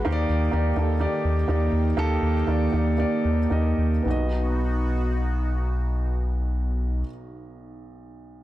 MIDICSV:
0, 0, Header, 1, 4, 480
1, 0, Start_track
1, 0, Tempo, 475059
1, 60, Time_signature, 4, 2, 24, 8
1, 1500, Tempo, 500417
1, 2940, Tempo, 534283
1, 3900, Tempo, 552486
1, 7705, End_track
2, 0, Start_track
2, 0, Title_t, "Grand piano"
2, 0, Program_c, 0, 0
2, 0, Control_c, 0, 64, 127
2, 47, Note_on_c, 0, 58, 95
2, 51, Note_on_c, 0, 63, 85
2, 59, Note_on_c, 0, 51, 68
2, 59, Note_on_c, 0, 67, 85
2, 66, Note_on_c, 0, 72, 82
2, 71, Control_c, 0, 64, 0
2, 120, Note_off_c, 0, 72, 0
2, 125, Note_on_c, 0, 74, 101
2, 262, Control_c, 0, 64, 127
2, 397, Note_off_c, 0, 58, 0
2, 399, Note_off_c, 0, 63, 0
2, 403, Note_off_c, 0, 67, 0
2, 436, Note_off_c, 0, 74, 0
2, 518, Note_on_c, 0, 58, 79
2, 524, Note_on_c, 0, 63, 73
2, 530, Note_on_c, 0, 67, 73
2, 538, Note_on_c, 0, 74, 85
2, 699, Note_off_c, 0, 58, 0
2, 702, Note_off_c, 0, 63, 0
2, 705, Note_off_c, 0, 67, 0
2, 709, Note_off_c, 0, 74, 0
2, 733, Note_off_c, 0, 51, 0
2, 771, Note_on_c, 0, 58, 67
2, 776, Note_on_c, 0, 63, 59
2, 781, Note_on_c, 0, 67, 64
2, 787, Note_on_c, 0, 69, 69
2, 946, Note_off_c, 0, 58, 0
2, 949, Note_off_c, 0, 63, 0
2, 951, Note_off_c, 0, 67, 0
2, 954, Note_off_c, 0, 69, 0
2, 1002, Note_on_c, 0, 58, 71
2, 1008, Note_on_c, 0, 63, 71
2, 1015, Note_on_c, 0, 67, 72
2, 1022, Note_on_c, 0, 74, 87
2, 1359, Note_off_c, 0, 58, 0
2, 1362, Note_off_c, 0, 63, 0
2, 1365, Note_off_c, 0, 67, 0
2, 1369, Note_off_c, 0, 74, 0
2, 1493, Note_on_c, 0, 58, 73
2, 1500, Note_on_c, 0, 63, 72
2, 1504, Note_on_c, 0, 67, 67
2, 1513, Note_on_c, 0, 74, 70
2, 1835, Note_off_c, 0, 58, 0
2, 1839, Note_off_c, 0, 63, 0
2, 1841, Note_off_c, 0, 67, 0
2, 1845, Note_off_c, 0, 74, 0
2, 1965, Note_on_c, 0, 58, 92
2, 1972, Note_on_c, 0, 63, 81
2, 1973, Note_on_c, 0, 51, 65
2, 1976, Note_on_c, 0, 67, 87
2, 1982, Note_on_c, 0, 69, 107
2, 2313, Note_off_c, 0, 58, 0
2, 2316, Note_off_c, 0, 63, 0
2, 2318, Note_off_c, 0, 67, 0
2, 2321, Note_off_c, 0, 69, 0
2, 2447, Note_on_c, 0, 58, 72
2, 2450, Note_on_c, 0, 63, 71
2, 2458, Note_on_c, 0, 67, 58
2, 2462, Note_on_c, 0, 74, 74
2, 2624, Note_off_c, 0, 58, 0
2, 2625, Note_off_c, 0, 63, 0
2, 2629, Note_off_c, 0, 67, 0
2, 2632, Note_off_c, 0, 74, 0
2, 2656, Note_off_c, 0, 51, 0
2, 2686, Note_on_c, 0, 58, 61
2, 2693, Note_on_c, 0, 63, 62
2, 2698, Note_on_c, 0, 67, 58
2, 2706, Note_on_c, 0, 74, 68
2, 2868, Note_off_c, 0, 58, 0
2, 2871, Note_off_c, 0, 63, 0
2, 2874, Note_off_c, 0, 67, 0
2, 2878, Note_off_c, 0, 74, 0
2, 2933, Note_on_c, 0, 58, 71
2, 2939, Note_on_c, 0, 63, 64
2, 2944, Note_on_c, 0, 67, 58
2, 2950, Note_on_c, 0, 74, 86
2, 3277, Note_off_c, 0, 58, 0
2, 3280, Note_off_c, 0, 63, 0
2, 3283, Note_off_c, 0, 67, 0
2, 3285, Note_off_c, 0, 74, 0
2, 3401, Note_on_c, 0, 58, 67
2, 3408, Note_on_c, 0, 63, 59
2, 3412, Note_on_c, 0, 67, 60
2, 3420, Note_on_c, 0, 75, 69
2, 3758, Note_off_c, 0, 58, 0
2, 3762, Note_off_c, 0, 63, 0
2, 3764, Note_off_c, 0, 67, 0
2, 3768, Note_off_c, 0, 75, 0
2, 3873, Note_on_c, 0, 59, 65
2, 3900, Note_on_c, 0, 63, 53
2, 3910, Note_on_c, 0, 35, 60
2, 3913, Control_c, 0, 64, 0
2, 3919, Note_on_c, 0, 66, 51
2, 3942, Note_on_c, 0, 75, 74
2, 4086, Control_c, 0, 64, 127
2, 6461, Note_off_c, 0, 59, 0
2, 6486, Note_off_c, 0, 63, 0
2, 6496, Note_off_c, 0, 35, 0
2, 6505, Note_off_c, 0, 66, 0
2, 6529, Note_off_c, 0, 75, 0
2, 7705, End_track
3, 0, Start_track
3, 0, Title_t, "Analog synth pad"
3, 0, Program_c, 1, 89
3, 57, Note_on_c, 1, 63, 69
3, 58, Note_on_c, 1, 51, 75
3, 59, Note_on_c, 1, 58, 66
3, 62, Note_on_c, 1, 67, 83
3, 3864, Note_off_c, 1, 51, 0
3, 3864, Note_off_c, 1, 63, 0
3, 3865, Note_off_c, 1, 58, 0
3, 3866, Note_off_c, 1, 67, 0
3, 3907, Note_on_c, 1, 66, 82
3, 3909, Note_on_c, 1, 47, 69
3, 3909, Note_on_c, 1, 59, 71
3, 3912, Note_on_c, 1, 63, 67
3, 6494, Note_off_c, 1, 66, 0
3, 6495, Note_off_c, 1, 47, 0
3, 6496, Note_off_c, 1, 59, 0
3, 6498, Note_off_c, 1, 63, 0
3, 7705, End_track
4, 0, Start_track
4, 0, Title_t, "Analog synth bass"
4, 0, Program_c, 2, 38
4, 58, Note_on_c, 2, 39, 86
4, 253, Note_off_c, 2, 39, 0
4, 295, Note_on_c, 2, 39, 96
4, 491, Note_off_c, 2, 39, 0
4, 535, Note_on_c, 2, 39, 84
4, 731, Note_off_c, 2, 39, 0
4, 773, Note_on_c, 2, 39, 86
4, 1069, Note_off_c, 2, 39, 0
4, 1256, Note_on_c, 2, 39, 83
4, 1456, Note_off_c, 2, 39, 0
4, 1500, Note_on_c, 2, 39, 91
4, 1692, Note_off_c, 2, 39, 0
4, 1729, Note_on_c, 2, 39, 90
4, 1925, Note_off_c, 2, 39, 0
4, 1966, Note_on_c, 2, 39, 89
4, 2163, Note_off_c, 2, 39, 0
4, 2206, Note_on_c, 2, 39, 87
4, 2404, Note_off_c, 2, 39, 0
4, 2451, Note_on_c, 2, 39, 80
4, 2650, Note_off_c, 2, 39, 0
4, 2694, Note_on_c, 2, 39, 70
4, 2995, Note_off_c, 2, 39, 0
4, 3174, Note_on_c, 2, 39, 78
4, 3369, Note_off_c, 2, 39, 0
4, 3410, Note_on_c, 2, 39, 92
4, 3610, Note_off_c, 2, 39, 0
4, 3651, Note_on_c, 2, 39, 85
4, 3855, Note_off_c, 2, 39, 0
4, 3900, Note_on_c, 2, 35, 84
4, 6486, Note_off_c, 2, 35, 0
4, 7705, End_track
0, 0, End_of_file